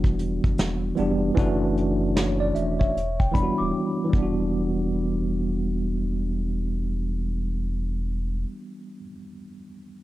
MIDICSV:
0, 0, Header, 1, 5, 480
1, 0, Start_track
1, 0, Tempo, 789474
1, 833, Time_signature, 4, 2, 24, 8
1, 6101, End_track
2, 0, Start_track
2, 0, Title_t, "Celesta"
2, 0, Program_c, 0, 8
2, 1700, Note_on_c, 0, 76, 80
2, 1930, Note_off_c, 0, 76, 0
2, 1943, Note_on_c, 0, 79, 75
2, 2028, Note_off_c, 0, 79, 0
2, 2029, Note_on_c, 0, 83, 88
2, 2174, Note_off_c, 0, 83, 0
2, 2177, Note_on_c, 0, 86, 71
2, 2725, Note_off_c, 0, 86, 0
2, 6101, End_track
3, 0, Start_track
3, 0, Title_t, "Tine electric piano"
3, 0, Program_c, 1, 4
3, 0, Control_c, 1, 64, 127
3, 0, Note_on_c, 1, 52, 85
3, 0, Note_on_c, 1, 55, 71
3, 0, Note_on_c, 1, 59, 75
3, 0, Note_on_c, 1, 62, 74
3, 0, Note_on_c, 1, 66, 85
3, 406, Note_off_c, 1, 52, 0
3, 408, Note_off_c, 1, 55, 0
3, 413, Note_off_c, 1, 59, 0
3, 416, Note_off_c, 1, 62, 0
3, 419, Note_off_c, 1, 66, 0
3, 578, Note_on_c, 1, 52, 73
3, 586, Note_on_c, 1, 55, 70
3, 591, Note_on_c, 1, 59, 75
3, 600, Note_on_c, 1, 62, 78
3, 605, Note_on_c, 1, 67, 85
3, 789, Note_off_c, 1, 52, 0
3, 794, Note_off_c, 1, 55, 0
3, 796, Note_off_c, 1, 59, 0
3, 800, Note_off_c, 1, 62, 0
3, 803, Note_off_c, 1, 67, 0
3, 819, Note_on_c, 1, 52, 115
3, 827, Note_on_c, 1, 57, 96
3, 832, Note_on_c, 1, 61, 96
3, 841, Control_c, 1, 64, 0
3, 841, Note_on_c, 1, 62, 97
3, 847, Note_on_c, 1, 66, 119
3, 964, Control_c, 1, 64, 127
3, 1314, Note_on_c, 1, 73, 60
3, 1425, Note_off_c, 1, 52, 0
3, 1429, Note_off_c, 1, 57, 0
3, 1432, Note_off_c, 1, 61, 0
3, 1436, Note_off_c, 1, 62, 0
3, 1440, Note_off_c, 1, 66, 0
3, 1457, Note_off_c, 1, 73, 0
3, 1461, Note_on_c, 1, 74, 74
3, 1547, Note_off_c, 1, 74, 0
3, 1551, Note_on_c, 1, 76, 72
3, 1695, Note_off_c, 1, 76, 0
3, 1699, Note_on_c, 1, 73, 66
3, 1801, Control_c, 1, 64, 0
3, 1896, Control_c, 1, 64, 127
3, 1929, Note_off_c, 1, 73, 0
3, 2017, Note_on_c, 1, 52, 85
3, 2025, Note_on_c, 1, 55, 80
3, 2031, Note_on_c, 1, 59, 73
3, 2036, Note_on_c, 1, 62, 70
3, 2046, Note_on_c, 1, 64, 69
3, 2085, Note_on_c, 1, 66, 86
3, 2089, Note_off_c, 1, 64, 0
3, 2451, Note_off_c, 1, 52, 0
3, 2458, Note_on_c, 1, 52, 74
3, 2479, Note_off_c, 1, 55, 0
3, 2487, Note_on_c, 1, 55, 66
3, 2506, Note_off_c, 1, 59, 0
3, 2514, Note_on_c, 1, 59, 65
3, 2515, Note_off_c, 1, 62, 0
3, 2520, Control_c, 1, 64, 0
3, 2539, Note_off_c, 1, 66, 0
3, 2542, Note_on_c, 1, 62, 67
3, 2568, Note_on_c, 1, 66, 83
3, 2610, Control_c, 1, 64, 127
3, 2760, Control_c, 1, 64, 0
3, 2852, Control_c, 1, 64, 127
3, 5464, Note_off_c, 1, 52, 0
3, 5492, Note_off_c, 1, 55, 0
3, 5519, Note_off_c, 1, 59, 0
3, 5547, Note_off_c, 1, 62, 0
3, 5573, Note_off_c, 1, 66, 0
3, 6101, End_track
4, 0, Start_track
4, 0, Title_t, "Sub bass"
4, 0, Program_c, 2, 38
4, 0, Note_on_c, 2, 28, 96
4, 239, Note_off_c, 2, 28, 0
4, 272, Note_on_c, 2, 30, 79
4, 342, Note_off_c, 2, 30, 0
4, 361, Note_on_c, 2, 28, 87
4, 556, Note_off_c, 2, 28, 0
4, 600, Note_on_c, 2, 29, 97
4, 795, Note_off_c, 2, 29, 0
4, 837, Note_on_c, 2, 30, 110
4, 1531, Note_off_c, 2, 30, 0
4, 1558, Note_on_c, 2, 28, 76
4, 1754, Note_off_c, 2, 28, 0
4, 1801, Note_on_c, 2, 28, 103
4, 2120, Note_off_c, 2, 28, 0
4, 2191, Note_on_c, 2, 26, 83
4, 2261, Note_off_c, 2, 26, 0
4, 2517, Note_on_c, 2, 28, 97
4, 5137, Note_off_c, 2, 28, 0
4, 6101, End_track
5, 0, Start_track
5, 0, Title_t, "Drums"
5, 25, Note_on_c, 9, 36, 96
5, 85, Note_off_c, 9, 36, 0
5, 116, Note_on_c, 9, 42, 71
5, 177, Note_off_c, 9, 42, 0
5, 268, Note_on_c, 9, 36, 91
5, 271, Note_on_c, 9, 42, 37
5, 328, Note_off_c, 9, 36, 0
5, 332, Note_off_c, 9, 42, 0
5, 353, Note_on_c, 9, 42, 88
5, 360, Note_on_c, 9, 38, 109
5, 414, Note_off_c, 9, 42, 0
5, 421, Note_off_c, 9, 38, 0
5, 589, Note_on_c, 9, 42, 55
5, 650, Note_off_c, 9, 42, 0
5, 834, Note_on_c, 9, 36, 105
5, 834, Note_on_c, 9, 42, 73
5, 895, Note_off_c, 9, 36, 0
5, 895, Note_off_c, 9, 42, 0
5, 1078, Note_on_c, 9, 42, 58
5, 1139, Note_off_c, 9, 42, 0
5, 1317, Note_on_c, 9, 38, 109
5, 1318, Note_on_c, 9, 42, 79
5, 1378, Note_off_c, 9, 38, 0
5, 1378, Note_off_c, 9, 42, 0
5, 1554, Note_on_c, 9, 42, 66
5, 1615, Note_off_c, 9, 42, 0
5, 1708, Note_on_c, 9, 36, 85
5, 1768, Note_off_c, 9, 36, 0
5, 1808, Note_on_c, 9, 42, 76
5, 1869, Note_off_c, 9, 42, 0
5, 1945, Note_on_c, 9, 36, 88
5, 2005, Note_off_c, 9, 36, 0
5, 2036, Note_on_c, 9, 36, 93
5, 2038, Note_on_c, 9, 42, 77
5, 2097, Note_off_c, 9, 36, 0
5, 2099, Note_off_c, 9, 42, 0
5, 2513, Note_on_c, 9, 36, 103
5, 2574, Note_off_c, 9, 36, 0
5, 6101, End_track
0, 0, End_of_file